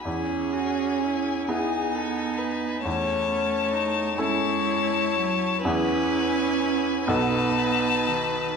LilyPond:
<<
  \new Staff \with { instrumentName = "Violin" } { \time 6/8 \key e \major \tempo 4. = 42 gis''4. gis''4. | a''4. a''4. | gis''4. a''4. | }
  \new Staff \with { instrumentName = "Violin" } { \time 6/8 \key e \major gis'4. gis'8 a'8 b'8 | cis''4. cis''4. | b'4. b'4. | }
  \new Staff \with { instrumentName = "Viola" } { \time 6/8 \key e \major e'8 fis'8 e'8 dis'4. | cis'8 cis'8 dis'8 e'4. | e'4. dis'4. | }
  \new Staff \with { instrumentName = "Grand piano" } { \time 6/8 \key e \major e,4. <b e' gis'>4. | e,4. <cis' e' a'>4. | <e, b e' gis'>4. <b,, b dis' a'>4. | }
  \new Staff \with { instrumentName = "Cello" } { \time 6/8 \key e \major cis'4. b4. | a4. gis4 fis8 | cis'4. b4 dis8 | }
>>